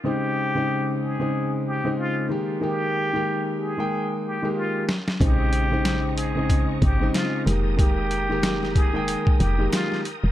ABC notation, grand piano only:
X:1
M:4/4
L:1/16
Q:"Swing 16ths" 1/4=93
K:Bbdor
V:1 name="Grand piano"
[D,A,CE]3 [D,A,CE]4 [D,A,CE]4 [D,A,CE]3 [E,A,B,G]2 | [E,A,B,G]3 [E,A,B,G]4 [E,A,B,g]4 [E,A,B,G]3 z2 | [D,A,CE]3 [D,A,CE]4 [D,A,CE]4 [D,A,CE]3 [E,A,B,G]2 | [E,A,B,G]3 [E,A,B,G]4 [E,A,B,g]4 [E,A,B,G]3 z2 |]